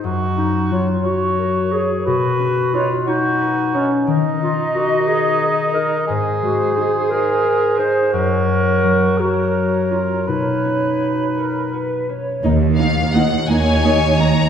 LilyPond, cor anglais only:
\new Staff \with { instrumentName = "Cor anglais" } { \time 6/8 \key ees \minor \tempo 4. = 59 ges'4. des''4. | b'4. fis'4. | ees'2. | aes'2. |
ges'4. bes'4. | b'2~ b'8 r8 | r2. | }